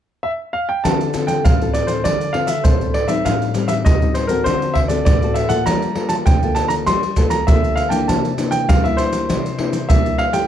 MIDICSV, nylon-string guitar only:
0, 0, Header, 1, 2, 480
1, 0, Start_track
1, 0, Key_signature, -1, "minor"
1, 0, Tempo, 602410
1, 680, Time_signature, 4, 2, 24, 8
1, 8345, End_track
2, 0, Start_track
2, 0, Title_t, "Nylon-string guitar"
2, 0, Program_c, 0, 24
2, 677, Note_on_c, 0, 50, 68
2, 679, Note_on_c, 0, 60, 61
2, 682, Note_on_c, 0, 65, 53
2, 684, Note_on_c, 0, 69, 64
2, 880, Note_off_c, 0, 60, 0
2, 881, Note_off_c, 0, 65, 0
2, 883, Note_off_c, 0, 69, 0
2, 910, Note_on_c, 0, 60, 50
2, 913, Note_on_c, 0, 65, 55
2, 916, Note_on_c, 0, 69, 62
2, 1135, Note_off_c, 0, 50, 0
2, 1140, Note_off_c, 0, 60, 0
2, 1142, Note_off_c, 0, 65, 0
2, 1142, Note_off_c, 0, 69, 0
2, 1157, Note_on_c, 0, 45, 64
2, 1286, Note_on_c, 0, 60, 54
2, 1291, Note_on_c, 0, 65, 60
2, 1293, Note_on_c, 0, 69, 63
2, 1614, Note_off_c, 0, 45, 0
2, 1638, Note_on_c, 0, 50, 69
2, 1725, Note_off_c, 0, 60, 0
2, 1726, Note_off_c, 0, 65, 0
2, 1728, Note_off_c, 0, 69, 0
2, 1865, Note_on_c, 0, 60, 62
2, 1870, Note_on_c, 0, 65, 56
2, 1873, Note_on_c, 0, 69, 63
2, 2014, Note_off_c, 0, 60, 0
2, 2015, Note_off_c, 0, 65, 0
2, 2017, Note_off_c, 0, 69, 0
2, 2095, Note_off_c, 0, 50, 0
2, 2114, Note_on_c, 0, 45, 60
2, 2116, Note_on_c, 0, 60, 47
2, 2118, Note_on_c, 0, 65, 47
2, 2121, Note_on_c, 0, 69, 56
2, 2342, Note_off_c, 0, 60, 0
2, 2344, Note_off_c, 0, 65, 0
2, 2346, Note_off_c, 0, 69, 0
2, 2458, Note_on_c, 0, 55, 57
2, 2463, Note_on_c, 0, 60, 71
2, 2466, Note_on_c, 0, 63, 73
2, 2573, Note_off_c, 0, 45, 0
2, 2596, Note_on_c, 0, 45, 64
2, 2792, Note_off_c, 0, 55, 0
2, 2792, Note_off_c, 0, 60, 0
2, 2793, Note_off_c, 0, 63, 0
2, 2830, Note_on_c, 0, 55, 65
2, 2835, Note_on_c, 0, 60, 58
2, 2836, Note_on_c, 0, 63, 56
2, 3054, Note_off_c, 0, 45, 0
2, 3061, Note_off_c, 0, 55, 0
2, 3062, Note_off_c, 0, 60, 0
2, 3064, Note_off_c, 0, 63, 0
2, 3081, Note_on_c, 0, 45, 68
2, 3205, Note_on_c, 0, 55, 67
2, 3210, Note_on_c, 0, 60, 53
2, 3213, Note_on_c, 0, 63, 66
2, 3405, Note_off_c, 0, 55, 0
2, 3407, Note_off_c, 0, 60, 0
2, 3409, Note_off_c, 0, 63, 0
2, 3426, Note_on_c, 0, 60, 71
2, 3430, Note_on_c, 0, 66, 65
2, 3434, Note_on_c, 0, 69, 70
2, 3537, Note_off_c, 0, 45, 0
2, 3560, Note_on_c, 0, 50, 70
2, 3876, Note_off_c, 0, 60, 0
2, 3876, Note_off_c, 0, 66, 0
2, 3879, Note_off_c, 0, 69, 0
2, 3899, Note_on_c, 0, 60, 57
2, 3905, Note_on_c, 0, 66, 63
2, 3908, Note_on_c, 0, 69, 68
2, 4017, Note_off_c, 0, 50, 0
2, 4039, Note_on_c, 0, 45, 62
2, 4112, Note_off_c, 0, 60, 0
2, 4114, Note_off_c, 0, 66, 0
2, 4116, Note_off_c, 0, 69, 0
2, 4168, Note_on_c, 0, 60, 56
2, 4171, Note_on_c, 0, 66, 69
2, 4175, Note_on_c, 0, 69, 63
2, 4367, Note_off_c, 0, 60, 0
2, 4369, Note_off_c, 0, 66, 0
2, 4369, Note_off_c, 0, 69, 0
2, 4384, Note_on_c, 0, 58, 68
2, 4390, Note_on_c, 0, 65, 70
2, 4390, Note_on_c, 0, 69, 75
2, 4497, Note_off_c, 0, 45, 0
2, 4520, Note_on_c, 0, 55, 68
2, 4715, Note_off_c, 0, 58, 0
2, 4716, Note_off_c, 0, 65, 0
2, 4718, Note_off_c, 0, 69, 0
2, 4745, Note_on_c, 0, 58, 60
2, 4749, Note_on_c, 0, 65, 54
2, 4754, Note_on_c, 0, 69, 58
2, 4977, Note_off_c, 0, 55, 0
2, 5000, Note_on_c, 0, 50, 66
2, 5075, Note_off_c, 0, 58, 0
2, 5078, Note_off_c, 0, 65, 0
2, 5079, Note_off_c, 0, 69, 0
2, 5125, Note_on_c, 0, 58, 61
2, 5130, Note_on_c, 0, 65, 60
2, 5133, Note_on_c, 0, 69, 67
2, 5457, Note_off_c, 0, 50, 0
2, 5478, Note_on_c, 0, 55, 65
2, 5566, Note_off_c, 0, 58, 0
2, 5568, Note_off_c, 0, 65, 0
2, 5569, Note_off_c, 0, 69, 0
2, 5712, Note_on_c, 0, 58, 55
2, 5716, Note_on_c, 0, 65, 56
2, 5719, Note_on_c, 0, 69, 66
2, 5919, Note_off_c, 0, 58, 0
2, 5921, Note_off_c, 0, 65, 0
2, 5922, Note_off_c, 0, 69, 0
2, 5937, Note_off_c, 0, 55, 0
2, 5961, Note_on_c, 0, 50, 58
2, 5962, Note_on_c, 0, 58, 54
2, 5964, Note_on_c, 0, 65, 50
2, 5970, Note_on_c, 0, 69, 56
2, 6284, Note_off_c, 0, 58, 0
2, 6286, Note_off_c, 0, 65, 0
2, 6287, Note_off_c, 0, 69, 0
2, 6301, Note_on_c, 0, 58, 65
2, 6305, Note_on_c, 0, 62, 66
2, 6308, Note_on_c, 0, 64, 72
2, 6419, Note_off_c, 0, 50, 0
2, 6441, Note_on_c, 0, 48, 71
2, 6634, Note_off_c, 0, 58, 0
2, 6635, Note_off_c, 0, 62, 0
2, 6637, Note_off_c, 0, 64, 0
2, 6675, Note_on_c, 0, 58, 49
2, 6680, Note_on_c, 0, 62, 50
2, 6684, Note_on_c, 0, 64, 58
2, 6898, Note_off_c, 0, 48, 0
2, 6905, Note_off_c, 0, 58, 0
2, 6906, Note_off_c, 0, 62, 0
2, 6909, Note_off_c, 0, 64, 0
2, 6919, Note_on_c, 0, 55, 67
2, 7045, Note_on_c, 0, 58, 67
2, 7049, Note_on_c, 0, 62, 62
2, 7052, Note_on_c, 0, 64, 64
2, 7377, Note_off_c, 0, 55, 0
2, 7404, Note_on_c, 0, 48, 73
2, 7486, Note_off_c, 0, 58, 0
2, 7488, Note_off_c, 0, 62, 0
2, 7489, Note_off_c, 0, 64, 0
2, 7638, Note_on_c, 0, 58, 56
2, 7642, Note_on_c, 0, 62, 54
2, 7644, Note_on_c, 0, 64, 64
2, 7782, Note_off_c, 0, 58, 0
2, 7783, Note_off_c, 0, 62, 0
2, 7785, Note_off_c, 0, 64, 0
2, 7860, Note_off_c, 0, 48, 0
2, 7888, Note_on_c, 0, 55, 59
2, 7893, Note_on_c, 0, 58, 51
2, 7893, Note_on_c, 0, 62, 44
2, 7897, Note_on_c, 0, 64, 47
2, 8209, Note_off_c, 0, 58, 0
2, 8210, Note_off_c, 0, 62, 0
2, 8212, Note_off_c, 0, 64, 0
2, 8232, Note_on_c, 0, 57, 61
2, 8235, Note_on_c, 0, 64, 62
2, 8241, Note_on_c, 0, 67, 67
2, 8342, Note_off_c, 0, 55, 0
2, 8345, Note_off_c, 0, 57, 0
2, 8345, Note_off_c, 0, 64, 0
2, 8345, Note_off_c, 0, 67, 0
2, 8345, End_track
0, 0, End_of_file